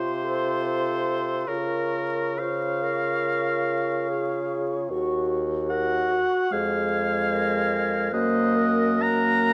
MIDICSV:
0, 0, Header, 1, 6, 480
1, 0, Start_track
1, 0, Key_signature, -5, "minor"
1, 0, Tempo, 827586
1, 857, Tempo, 911854
1, 858, Time_signature, 4, 2, 24, 8
1, 1337, Tempo, 841515
1, 2297, Tempo, 810811
1, 4697, Tempo, 895522
1, 5177, Tempo, 816327
1, 5477, End_track
2, 0, Start_track
2, 0, Title_t, "Flute"
2, 0, Program_c, 0, 73
2, 0, Note_on_c, 0, 84, 58
2, 856, Note_on_c, 0, 85, 49
2, 864, Note_off_c, 0, 84, 0
2, 1337, Note_off_c, 0, 85, 0
2, 1344, Note_on_c, 0, 85, 59
2, 2766, Note_off_c, 0, 85, 0
2, 2786, Note_on_c, 0, 85, 57
2, 3089, Note_off_c, 0, 85, 0
2, 3272, Note_on_c, 0, 85, 60
2, 3747, Note_on_c, 0, 92, 64
2, 3756, Note_off_c, 0, 85, 0
2, 4689, Note_off_c, 0, 92, 0
2, 4692, Note_on_c, 0, 90, 71
2, 5164, Note_off_c, 0, 90, 0
2, 5184, Note_on_c, 0, 90, 70
2, 5477, Note_off_c, 0, 90, 0
2, 5477, End_track
3, 0, Start_track
3, 0, Title_t, "Oboe"
3, 0, Program_c, 1, 68
3, 0, Note_on_c, 1, 72, 84
3, 859, Note_on_c, 1, 70, 65
3, 866, Note_off_c, 1, 72, 0
3, 1334, Note_on_c, 1, 77, 83
3, 1343, Note_off_c, 1, 70, 0
3, 2785, Note_off_c, 1, 77, 0
3, 3258, Note_on_c, 1, 78, 94
3, 3745, Note_on_c, 1, 77, 96
3, 3754, Note_off_c, 1, 78, 0
3, 4698, Note_off_c, 1, 77, 0
3, 4701, Note_on_c, 1, 75, 94
3, 5176, Note_on_c, 1, 82, 122
3, 5185, Note_off_c, 1, 75, 0
3, 5477, Note_off_c, 1, 82, 0
3, 5477, End_track
4, 0, Start_track
4, 0, Title_t, "Clarinet"
4, 0, Program_c, 2, 71
4, 0, Note_on_c, 2, 65, 52
4, 139, Note_on_c, 2, 69, 67
4, 148, Note_off_c, 2, 65, 0
4, 860, Note_off_c, 2, 69, 0
4, 865, Note_on_c, 2, 70, 58
4, 1343, Note_on_c, 2, 72, 58
4, 1351, Note_off_c, 2, 70, 0
4, 1589, Note_on_c, 2, 70, 69
4, 1598, Note_off_c, 2, 72, 0
4, 2303, Note_on_c, 2, 68, 63
4, 2312, Note_off_c, 2, 70, 0
4, 2789, Note_off_c, 2, 68, 0
4, 2793, Note_on_c, 2, 66, 59
4, 3263, Note_on_c, 2, 70, 67
4, 3272, Note_off_c, 2, 66, 0
4, 3504, Note_on_c, 2, 66, 59
4, 3513, Note_off_c, 2, 70, 0
4, 3747, Note_on_c, 2, 68, 67
4, 3756, Note_off_c, 2, 66, 0
4, 4057, Note_off_c, 2, 68, 0
4, 4220, Note_on_c, 2, 70, 67
4, 4695, Note_on_c, 2, 72, 73
4, 4703, Note_off_c, 2, 70, 0
4, 4931, Note_on_c, 2, 70, 85
4, 4939, Note_off_c, 2, 72, 0
4, 5477, Note_off_c, 2, 70, 0
4, 5477, End_track
5, 0, Start_track
5, 0, Title_t, "French horn"
5, 0, Program_c, 3, 60
5, 0, Note_on_c, 3, 65, 66
5, 843, Note_off_c, 3, 65, 0
5, 867, Note_on_c, 3, 65, 58
5, 1333, Note_off_c, 3, 65, 0
5, 1344, Note_on_c, 3, 65, 56
5, 2766, Note_off_c, 3, 65, 0
5, 2792, Note_on_c, 3, 66, 59
5, 3092, Note_off_c, 3, 66, 0
5, 3256, Note_on_c, 3, 66, 63
5, 3717, Note_off_c, 3, 66, 0
5, 3740, Note_on_c, 3, 56, 73
5, 4676, Note_off_c, 3, 56, 0
5, 4696, Note_on_c, 3, 58, 69
5, 5166, Note_off_c, 3, 58, 0
5, 5177, Note_on_c, 3, 58, 79
5, 5477, Note_off_c, 3, 58, 0
5, 5477, End_track
6, 0, Start_track
6, 0, Title_t, "Bassoon"
6, 0, Program_c, 4, 70
6, 0, Note_on_c, 4, 48, 61
6, 852, Note_off_c, 4, 48, 0
6, 856, Note_on_c, 4, 49, 56
6, 2791, Note_on_c, 4, 39, 64
6, 2800, Note_off_c, 4, 49, 0
6, 3578, Note_off_c, 4, 39, 0
6, 3749, Note_on_c, 4, 41, 69
6, 4676, Note_off_c, 4, 41, 0
6, 4700, Note_on_c, 4, 42, 65
6, 5477, Note_off_c, 4, 42, 0
6, 5477, End_track
0, 0, End_of_file